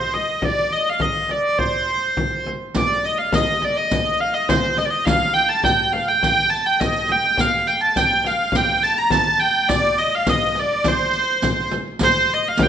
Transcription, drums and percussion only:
0.14 frame drum
0.42 frame drum
0.71 frame drum
1.00 frame drum
1.29 frame drum
1.59 frame drum
2.17 frame drum
2.46 frame drum
2.75 riq, frame drum
3.04 riq, frame drum
3.33 riq, frame drum
3.62 riq, frame drum
3.91 riq, frame drum
4.20 frame drum
4.49 riq, frame drum
4.77 riq, frame drum
5.07 riq, frame drum
5.36 riq, frame drum
5.64 riq, frame drum
5.93 frame drum
6.23 riq, frame drum
6.53 riq
6.81 riq, frame drum
7.09 frame drum
7.38 riq, frame drum
7.67 riq, frame drum
7.96 riq, frame drum
8.24 riq, frame drum
8.52 riq, frame drum
8.82 riq, frame drum
9.10 riq, frame drum
9.41 riq
9.69 riq, frame drum
9.98 riq, frame drum
10.27 riq, frame drum
10.55 riq, frame drum
10.84 riq, frame drum
11.13 riq
11.42 riq, frame drum
11.71 riq, frame drum
11.99 riq, frame drum
12.30 frame drum
12.57 riq, frame drum

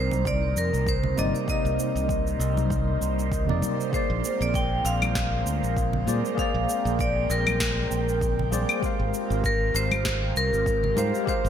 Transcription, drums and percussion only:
0.11 high conga, cabasa
0.25 kick, cabasa
0.57 cabasa
0.74 cabasa
0.87 kick, cabasa
1.03 low conga
1.18 high conga, cabasa
1.35 cabasa
1.48 kick, cabasa
1.66 cabasa
1.79 cabasa
1.97 cabasa
2.09 kick, cabasa
2.27 cabasa
2.41 cabasa
2.57 high conga, cabasa
2.70 kick, cabasa
3.02 cabasa
3.19 cabasa
3.32 kick, cabasa
3.49 low conga
3.62 high conga, cabasa
3.81 cabasa
3.93 kick, cabasa
4.25 cabasa
4.42 cabasa
4.54 kick, cabasa
4.86 cabasa
5.02 high conga, cabasa, claves
5.15 kick, snare, cabasa
5.47 cabasa
5.64 cabasa
5.76 kick, cabasa
5.93 low conga
6.07 high conga, cabasa
6.25 cabasa
6.38 kick, cabasa
6.69 cabasa
6.86 cabasa
6.99 kick, cabasa
7.30 cabasa
7.47 high conga, cabasa, claves
7.60 kick, snare, cabasa
7.92 cabasa
8.09 cabasa
8.21 kick, cabasa
8.39 low conga
8.52 high conga, cabasa
8.69 cabasa, claves
8.83 kick, cabasa
9.14 cabasa
9.31 cabasa
9.44 kick, cabasa
9.75 cabasa
9.91 high conga, cabasa, claves
10.05 kick, snare, cabasa
10.37 cabasa
10.54 cabasa
10.66 kick, cabasa
10.84 low conga
10.97 high conga, cabasa
11.15 cabasa
11.27 kick, cabasa
11.46 cabasa

